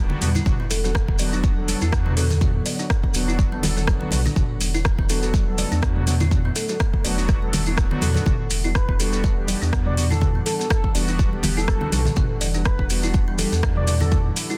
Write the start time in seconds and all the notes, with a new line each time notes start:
Already playing: D1 D3 G3 B3 D4 E4 F#4 F#5
0.10 low conga
0.21 E2 G3 B3 D4 F#4, open hi-hat, mid tom, high conga, maracas
0.35 E4, muted conga, low conga, maracas
0.45 E1 F#3 B3 D4 F#4, kick, mid tom, low conga, maracas
0.60 B3
0.70 A4, open hi-hat, muted conga, maracas
0.84 F#3 B3 D4 F#4 A4, maracas
0.95 E5, kick, cross-stick, maracas
1.08 kick, muted conga
1.19 F#3 B3 D4 F#4 D5, open hi-hat, maracas
1.33 D4, maracas
1.43 kick, muted conga, high conga, maracas
1.57 F#3 B3 D4 A4
1.68 open hi-hat, high conga, maracas
1.81 E2 E4, muted conga, maracas
1.92 F#3 B3 D4 F#4, kick, cross-stick, maracas
2.06 B3, mid tom
2.17 F#3 B3 D4 F#4 A4, open hi-hat, mid tom, maracas
2.30 A4, muted conga, low conga, maracas
2.41 F#3 B3 D4 F#4 E5, kick, mid tom, low conga, maracas
2.66 D5, open hi-hat, muted conga, maracas
2.79 F#3 B3 D4 F#4, maracas
2.90 kick, cross-stick, maracas
3.03 kick, muted conga
3.14 E1 F#3 B3 D4 F#4, open hi-hat, maracas
3.28 E4, maracas
3.39 kick, muted conga, high conga, maracas
3.52 F#3 B3 D4 A4, high conga
3.63 E1 A4, open hi-hat, high conga, low conga, maracas
3.76 A4, muted conga, maracas
3.87 F#3 D4 E5, kick, cross-stick, high conga, maracas
4.01 low conga
4.11 B1 F#3 B3 D4 F#4 D5, open hi-hat, mid tom, high conga, maracas
4.25 D4, muted conga, low conga, maracas
4.36 E1 F#3 A3 B3 D4 F#4, kick, mid tom, low conga, maracas
4.61 open hi-hat, muted conga, maracas
4.74 F#3 B3 D4 E4 F#4, maracas
4.85 kick, cross-stick, maracas
4.98 B3, kick, muted conga
5.09 F#3 B3 D4 F#4 A4, open hi-hat, maracas
5.23 A4, maracas
5.34 E5, kick, muted conga, high conga, maracas
5.47 F#3 B3 D4 A4
5.58 D5, open hi-hat, high conga, maracas
5.72 E2 D4, muted conga, maracas
5.82 F#3 B3 F#4, kick, cross-stick, maracas
5.96 mid tom
6.07 F#3 B3 D4 F#4, open hi-hat, mid tom, maracas
6.20 E4, muted conga, low conga, maracas
6.31 F#3 B3 D4 F#4, kick, mid tom, low conga, maracas
6.45 B3
6.55 A4, open hi-hat, muted conga, maracas
6.69 F#3 B3 D4 F#4 A4, maracas
6.80 E5, kick, cross-stick, maracas
6.93 kick, muted conga
7.04 E1 F#3 B3 D4 F#4 D5, open hi-hat, high conga, maracas
7.18 D4, maracas
7.28 kick, cross-stick, muted conga, high conga, maracas
7.42 F#3 B3 D4 A4, high conga
7.53 E1, open hi-hat, high conga, low conga, maracas
7.66 F#3 B3 D4 E4 F#4, muted conga, maracas
7.77 D1, kick, cross-stick, high conga, maracas
7.91 F#3 B3 D4 F#4, low conga
8.01 E2 A4, open hi-hat, mid tom, high conga, maracas
8.14 A4, muted conga, low conga, maracas
8.26 E1 E3 G3 B3 D4 F#4 F#5, kick, mid tom, low conga, maracas
8.50 open hi-hat, muted conga, maracas
8.64 G3 B3 D4 E4 F#4, maracas
8.75 B4, kick, cross-stick, maracas
8.88 B3, kick, muted conga
8.99 G3 B3 D4 F#4 A4, open hi-hat, maracas
9.13 A4, maracas
9.24 E5, kick, muted conga, high conga, maracas
9.37 G3 B3 D4 G4
9.48 D5, open hi-hat, high conga, maracas
9.61 E2 D4, muted conga, maracas
9.73 G3 B3 F#4, kick, cross-stick, maracas
9.86 D5, mid tom
9.97 G3 B3 D4 F#4, open hi-hat, mid tom, maracas
10.10 E4 A4, muted conga, low conga, maracas
10.21 G3 B3 D4 F#4, kick, mid tom, low conga, maracas
10.35 B3
10.46 A4, open hi-hat, muted conga, maracas
10.59 G3 B3 D4 F#4 A4, maracas
10.70 A4 E5, kick, cross-stick, maracas
10.84 kick, muted conga
10.94 E1 G3 B3 D4 F#4 D5, open hi-hat, maracas
11.08 D4, maracas
11.19 kick, muted conga, high conga, maracas
11.33 G3 B3 D4 G4, high conga
11.43 E1, open hi-hat, high conga, low conga, maracas
11.57 E4 A4, muted conga, maracas
11.68 G3 D4 F#4, kick, cross-stick, high conga, maracas
11.81 B3, low conga
11.92 B1 G3 B3 D4 F#4 A4, open hi-hat, mid tom, high conga, maracas
12.05 A4, muted conga, low conga, maracas
12.16 E1 G3 B3 D4 E4 F#4 E5, kick, mid tom, low conga, maracas
12.41 D5, open hi-hat, muted conga, maracas
12.54 G3 B3 D4 F#4, maracas
12.65 B4, kick, cross-stick, maracas
12.79 kick, muted conga
12.90 G3 B3 D4 F#4, open hi-hat, maracas
13.03 E4, maracas
13.14 kick, muted conga, high conga, maracas
13.28 G3 B3 D4 G4
13.38 A4, open hi-hat, high conga, maracas
13.52 E2 A4, muted conga, maracas
13.63 G3 E5, kick, cross-stick, maracas
13.76 D5, mid tom
13.87 G3 B3 D4 F#4 D5, open hi-hat, mid tom, maracas
14.00 D4 A4, muted conga, low conga, maracas
14.12 G3 B3 D4 F#4, kick, mid tom, low conga, maracas
14.36 open hi-hat, muted conga, maracas
14.50 G3 B3 D4 E4 F#4, maracas